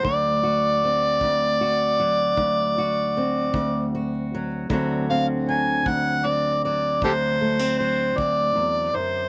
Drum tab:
BD |o--o--o--o--|o--o--o--o--|